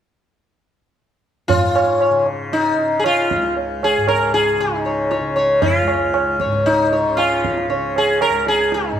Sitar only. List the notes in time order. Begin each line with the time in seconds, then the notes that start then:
1.48 F4
1.75 C#5
2.02 C#5
2.53 D#4
3.00 G#4
3.06 F4
3.84 G#4
4.08 A#4
4.34 G#4
4.60 D#4
4.86 C#5
5.11 C#5
5.36 C#5
5.62 F4
6.41 C#5
6.66 D#4
6.93 C#5
7.17 F4
7.70 C#5
7.98 G#4
8.22 A#4
8.48 G#4
8.74 D#4